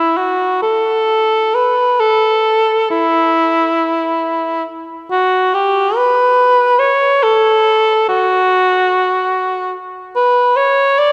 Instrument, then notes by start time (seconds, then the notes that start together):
cor anglais
Already playing: E4
0.17 F#4
0.62 A4
1.55 B4
2.00 A4
2.91 E4
5.11 F#4
5.54 G4
5.96 B4
6.79 C#5
7.23 A4
8.09 F#4
10.16 B4
10.56 C#5
10.99 D5